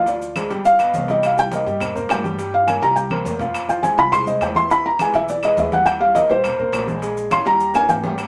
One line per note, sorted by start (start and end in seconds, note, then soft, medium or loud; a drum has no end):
0.00 0.45 D2 medium
0.06 0.30 F3 medium
0.06 0.30 F4 medium
0.06 0.48 D5 medium
0.06 0.31 F5 medium
0.06 high conga soft
0.06 high timbale medium
0.06 maracas medium
0.21 high conga soft
0.21 maracas medium
0.36 0.48 G#3 medium
0.36 0.48 G#4 medium
0.36 0.49 C5 medium
0.36 high conga medium
0.36 high timbale medium
0.36 low timbale medium
0.36 claves medium
0.36 maracas medium
0.50 0.91 G1 medium
0.50 0.74 G3 medium
0.50 0.74 G4 medium
0.50 0.75 G5 medium
0.50 high conga soft
0.50 high timbale medium
0.50 maracas soft
0.65 1.06 F5 loud
0.65 high conga soft
0.65 maracas medium
0.79 0.91 B3 medium
0.79 0.92 B4 medium
0.79 0.92 D#5 medium
0.79 high conga soft
0.79 high timbale loud
0.79 claves medium
0.79 maracas medium
0.94 1.61 C2 loud
0.94 1.06 B3 medium
0.94 1.07 B4 medium
0.94 1.07 D#5 medium
0.94 high conga medium
0.94 low timbale medium
0.94 maracas medium
1.08 1.32 G3 medium
1.08 1.32 G4 medium
1.08 1.24 D#5 medium
1.08 1.33 G5 medium
1.08 high conga medium
1.08 high timbale medium
1.08 maracas soft
1.23 1.38 F5 medium
1.23 high conga soft
1.23 high timbale medium
1.23 claves medium
1.23 maracas medium
1.37 1.49 G3 medium
1.37 1.49 G4 medium
1.37 1.49 G5 medium
1.37 1.52 G5 loud
1.37 high conga soft
1.37 maracas medium
1.51 1.64 A#3 medium
1.51 1.64 A#4 medium
1.51 1.64 C5 medium
1.51 1.94 D#5 medium
1.51 high conga loud
1.51 high timbale medium
1.51 low timbale medium
1.51 maracas medium
1.66 2.07 G2 loud
1.66 1.78 G3 medium
1.66 1.78 G4 medium
1.66 1.79 G5 medium
1.66 high conga soft
1.66 maracas soft
1.80 1.93 A#3 medium
1.80 1.93 A#4 medium
1.80 1.93 C5 medium
1.80 high conga soft
1.80 low conga medium
1.80 high timbale loud
1.80 claves medium
1.80 maracas medium
1.95 2.19 A#3 medium
1.95 2.19 A#4 medium
1.95 2.19 C5 medium
1.95 high conga soft
1.95 low conga medium
1.95 maracas medium
2.09 2.77 G2 loud
2.09 2.51 G5 medium
2.09 high conga soft
2.09 high timbale loud
2.09 low timbale medium
2.09 claves medium
2.09 maracas medium
2.23 2.36 G3 medium
2.23 2.36 G4 medium
2.23 2.36 G5 medium
2.23 high conga medium
2.23 maracas soft
2.38 2.62 G3 medium
2.38 2.62 G4 medium
2.38 2.63 G5 medium
2.38 high conga soft
2.38 high timbale medium
2.38 maracas medium
2.54 2.68 F5 medium
2.54 high conga soft
2.67 2.80 A#3 medium
2.67 2.80 A#4 medium
2.67 2.80 C#5 medium
2.67 2.82 G#5 medium
2.67 high conga medium
2.67 high timbale medium
2.67 low timbale medium
2.67 claves medium
2.67 maracas medium
2.82 3.23 C2 loud
2.82 3.06 G3 medium
2.82 3.06 G4 medium
2.82 3.06 G5 medium
2.82 2.97 A#5 loud
2.82 high conga soft
2.82 high timbale medium
2.82 maracas soft
2.96 3.37 G5 medium
2.96 high conga soft
2.96 maracas medium
3.10 3.23 A#3 medium
3.10 3.23 A#4 medium
3.10 3.23 C5 medium
3.10 high conga loud
3.10 high timbale medium
3.10 claves medium
3.25 3.93 F2 loud
3.25 3.38 A#3 medium
3.25 3.38 A#4 medium
3.25 3.38 C5 medium
3.25 high conga medium
3.25 low timbale loud
3.25 maracas medium
3.39 3.64 F3 medium
3.39 3.64 F4 medium
3.39 3.64 F5 medium
3.39 low conga loud
3.39 high timbale medium
3.39 maracas soft
3.54 high conga soft
3.54 high timbale medium
3.54 claves medium
3.54 maracas medium
3.68 3.81 F3 medium
3.68 3.81 F4 medium
3.68 3.81 F5 medium
3.68 3.83 G5 medium
3.68 high conga soft
3.68 maracas medium
3.83 3.96 G#3 medium
3.83 3.96 G#4 medium
3.83 3.96 C5 medium
3.83 3.97 G#5 medium
3.83 high conga loud
3.83 high timbale medium
3.83 low timbale medium
3.83 maracas medium
3.97 4.38 C2 loud
3.97 4.10 F3 medium
3.97 4.10 F4 medium
3.97 4.10 F5 medium
3.97 4.13 B5 loud
3.97 maracas soft
4.12 4.24 G#3 medium
4.12 4.25 G#4 medium
4.12 4.25 C5 medium
4.12 4.27 C6 loud
4.12 high conga soft
4.12 low conga medium
4.12 high timbale medium
4.12 claves medium
4.12 maracas medium
4.26 4.51 G#3 medium
4.26 4.51 G#4 medium
4.26 4.51 C5 medium
4.26 4.41 D#5 medium
4.26 high conga soft
4.26 low conga medium
4.26 maracas medium
4.41 5.08 E2 medium
4.41 4.56 G5 medium
4.41 high timbale loud
4.41 low timbale loud
4.41 claves medium
4.41 maracas medium
4.55 4.68 E3 medium
4.55 4.68 E4 medium
4.55 4.68 E5 medium
4.55 4.70 C6 loud
4.55 high conga medium
4.55 maracas soft
4.70 4.95 E3 medium
4.70 4.95 E4 medium
4.70 4.95 E5 medium
4.70 4.85 B5 medium
4.70 high conga soft
4.70 high timbale medium
4.70 maracas medium
4.85 5.00 A#5 medium
4.85 high conga soft
4.99 5.11 G#3 medium
4.99 5.12 G#4 medium
4.99 5.12 B4 medium
4.99 5.15 G#5 medium
4.99 high conga medium
4.99 high timbale medium
4.99 low timbale medium
4.99 claves medium
4.99 maracas medium
5.14 5.54 B1 medium
5.14 5.38 E3 medium
5.14 5.38 E4 loud
5.14 5.38 E5 medium
5.14 5.29 E5 loud
5.14 high conga soft
5.14 high timbale medium
5.14 maracas soft
5.28 5.43 D5 medium
5.28 high conga soft
5.28 maracas medium
5.43 5.55 G#3 medium
5.43 5.55 G#4 medium
5.43 5.55 B4 medium
5.43 5.58 D#5 medium
5.43 high conga soft
5.43 high timbale medium
5.43 claves medium
5.43 maracas medium
5.57 6.24 D#2 loud
5.57 5.70 G#3 medium
5.57 5.70 G#4 medium
5.57 5.70 B4 medium
5.57 5.72 E5 medium
5.57 high conga medium
5.57 low timbale medium
5.57 maracas medium
5.72 5.96 G3 medium
5.72 5.96 G4 medium
5.72 5.87 F#5 medium
5.72 5.96 G5 medium
5.72 high conga medium
5.72 high timbale medium
5.72 maracas soft
5.86 6.00 G5 loud
5.86 high conga soft
5.86 high timbale medium
5.86 claves medium
5.86 maracas medium
6.00 6.12 G3 medium
6.00 6.13 G4 medium
6.00 6.15 F5 medium
6.00 6.13 G5 medium
6.00 high conga soft
6.14 6.27 A#3 medium
6.14 6.27 A#4 medium
6.14 6.27 C5 medium
6.14 6.29 D#5 medium
6.14 high conga loud
6.14 high timbale medium
6.14 low timbale medium
6.14 maracas medium
6.29 6.70 A#1 loud
6.29 6.42 G3 medium
6.29 6.42 G4 medium
6.29 6.99 C5 medium
6.29 6.42 G5 medium
6.29 high conga soft
6.29 maracas soft
6.43 6.56 A#3 medium
6.43 6.56 A#4 medium
6.43 6.56 C5 medium
6.43 high conga soft
6.43 low conga medium
6.43 high timbale loud
6.43 claves medium
6.43 maracas medium
6.58 6.82 A#3 medium
6.58 6.83 A#4 medium
6.58 6.83 C5 medium
6.58 high conga soft
6.58 low conga medium
6.72 7.40 A#1 loud
6.72 high conga soft
6.72 high timbale loud
6.72 low timbale medium
6.72 claves medium
6.72 maracas medium
6.87 6.99 G#3 medium
6.87 6.99 G#4 medium
6.87 7.00 G#5 medium
6.87 high conga medium
6.87 maracas soft
7.02 7.26 G#3 medium
7.02 7.26 G#4 medium
7.02 7.26 G#5 medium
7.02 high timbale medium
7.02 maracas medium
7.17 high conga soft
7.17 maracas medium
7.30 7.43 C#4 medium
7.30 7.43 C#5 medium
7.30 7.43 F5 medium
7.30 7.46 C6 medium
7.30 high conga loud
7.30 high timbale medium
7.30 low timbale medium
7.30 claves medium
7.30 maracas medium
7.45 7.86 D#2 loud
7.45 7.69 G3 medium
7.45 7.69 G4 medium
7.45 7.70 G5 medium
7.45 7.73 A#5 loud
7.45 high conga soft
7.45 high timbale medium
7.45 maracas soft
7.60 high conga soft
7.60 maracas medium
7.74 7.86 A#3 medium
7.74 7.86 A#4 medium
7.74 7.86 C#5 medium
7.74 7.89 G#5 loud
7.74 high conga soft
7.74 high timbale medium
7.74 claves medium
7.74 maracas medium
7.89 8.27 G#1 loud
7.89 8.01 A#3 medium
7.89 8.01 A#4 medium
7.89 8.27 G5 medium
7.89 high conga medium
7.89 low timbale medium
7.89 maracas medium
8.03 8.15 G3 medium
8.03 8.16 G4 medium
8.03 8.16 G5 medium
8.03 high conga medium
8.03 low timbale medium
8.03 maracas soft
8.18 high conga soft
8.18 high timbale medium
8.18 claves medium
8.18 maracas medium